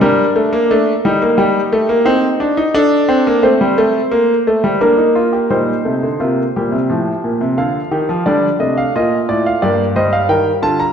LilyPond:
<<
  \new Staff \with { instrumentName = "Grand piano" } { \time 4/4 \key c \minor \tempo 4 = 88 << { bes'2 g'2 | a'4 c''2 bes'4 | c''2. f''4 | d''8 ees''16 f''16 ees''8 d''16 f''16 d''8 ees''16 f''16 g''8 a''16 bes''16 | } \\ { d'4 d'8 ees'4. ees'4 | r4 c'4 bes4 d'16 ees'16 f'16 g'16 | ees'4 f'8 g'4. a'8 g'8 | d'4 f'4 g'8 c''8 bes'8 f'8 | } >> }
  \new Staff \with { instrumentName = "Grand piano" } { \clef bass \time 4/4 \key c \minor << { g8 a16 bes16 a8 g16 bes16 g8 a16 bes16 c'8 d'16 ees'16 | d'8 c'16 bes16 a16 g16 a8 r8 a16 g16 bes4 | g8 a8 bes8 g8 f2 | g8 a4. bes8 g4. | } \\ { r1 | r1 | bes,8 c16 d16 c8 bes,16 c16 a,8 bes,16 c16 d8 ees16 f16 | d8 c8 bes,8 a,8 g,4 ees8 d8 | } >> }
>>